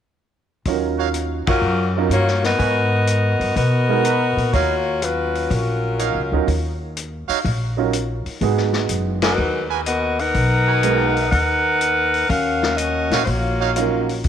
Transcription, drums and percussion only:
0.65 kick soft
0.65 open hi-hat soft
1.14 closed hi-hat medium
1.47 kick medium
1.47 ride medium
2.11 closed hi-hat medium
2.28 snare soft
2.44 snare soft
2.44 open hi-hat soft
2.60 kick soft
2.60 open hi-hat soft
3.07 closed hi-hat medium
3.41 open hi-hat soft
3.56 kick soft
3.56 open hi-hat soft
4.05 closed hi-hat soft
4.38 open hi-hat soft
4.53 kick soft
4.53 open hi-hat soft
5.02 closed hi-hat medium
5.35 open hi-hat soft
5.51 kick soft
5.51 open hi-hat soft
5.99 closed hi-hat medium
6.48 kick soft
6.48 open hi-hat soft
6.97 closed hi-hat medium
7.30 open hi-hat soft
7.45 kick soft
7.45 open hi-hat soft
7.93 closed hi-hat medium
8.26 open hi-hat soft
8.41 kick soft
8.41 open hi-hat soft
8.57 snare soft
8.73 snare soft
8.89 closed hi-hat medium
9.22 snare medium
9.22 ride medium
9.86 closed hi-hat medium
10.19 open hi-hat soft
10.34 kick soft
10.34 open hi-hat soft
10.83 closed hi-hat medium
11.16 open hi-hat soft
11.32 kick soft
11.32 open hi-hat soft
11.81 closed hi-hat medium
12.14 open hi-hat soft
12.30 kick soft
12.30 open hi-hat soft
12.63 snare medium
12.78 closed hi-hat medium
13.11 snare medium
13.11 open hi-hat soft
13.27 kick soft
13.27 open hi-hat soft
13.76 closed hi-hat medium
14.09 open hi-hat soft
14.24 kick soft
14.24 open hi-hat soft

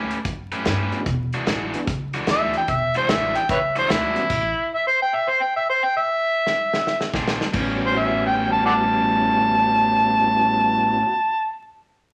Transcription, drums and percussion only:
0.11 closed hi-hat medium
0.25 kick loud
0.25 closed hi-hat medium
0.52 closed hi-hat medium
0.65 snare loud
0.65 closed hi-hat medium
0.92 closed hi-hat medium
1.06 kick loud
1.06 closed hi-hat medium
1.33 closed hi-hat medium
1.47 snare medium
1.47 closed hi-hat medium
1.74 closed hi-hat medium
1.87 kick loud
1.87 snare soft
1.87 closed hi-hat medium
2.13 closed hi-hat medium
2.27 snare medium
2.27 closed hi-hat medium
2.53 closed hi-hat medium
2.68 kick medium
2.68 closed hi-hat medium
2.94 closed hi-hat medium
3.09 snare loud
3.09 closed hi-hat medium
3.35 closed hi-hat medium
3.49 kick loud
3.49 closed hi-hat medium
3.76 closed hi-hat medium
3.90 snare loud
3.90 closed hi-hat medium
4.16 closed hi-hat medium
4.30 kick loud
4.30 closed hi-hat medium
4.30 crash medium
6.47 snare medium
6.73 snare medium
6.87 snare medium
7.01 snare medium
7.14 kick medium
7.14 snare medium
7.28 snare medium
7.41 snare medium
7.53 kick medium
7.53 crash medium

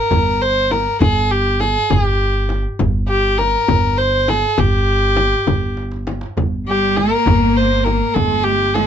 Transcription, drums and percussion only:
0.11 tombak dum medium
0.11 frame drum medium
0.71 tombak tek medium
0.71 frame drum medium
1.00 tombak dum medium
1.00 frame drum medium
1.31 tombak ka soft
1.60 tombak tek medium
1.60 frame drum medium
1.90 tombak dum medium
1.90 frame drum medium
2.49 tombak tek medium
2.49 frame drum medium
2.79 frame drum medium
2.79 tombak dum medium
3.09 tombak ka soft
3.39 tombak tek medium
3.39 frame drum medium
3.68 frame drum medium
3.68 tombak dum medium
4.28 tombak tek medium
4.28 frame drum medium
4.58 frame drum medium
4.58 tombak dum medium
5.17 tombak tek medium
5.17 frame drum medium
5.47 tombak dum medium
5.47 frame drum medium
5.77 tombak tek soft
5.92 tombak ka medium
6.07 tombak tek medium
6.07 frame drum medium
6.21 tombak ka medium
6.37 tombak dum medium
6.37 frame drum medium
6.96 tombak tek medium
6.96 frame drum medium
7.26 tombak dum medium
7.26 frame drum medium
7.86 tombak tek medium
7.86 frame drum medium
8.16 tombak dum medium
8.16 frame drum medium
8.45 tombak ka soft
8.75 tombak tek medium
8.75 frame drum medium

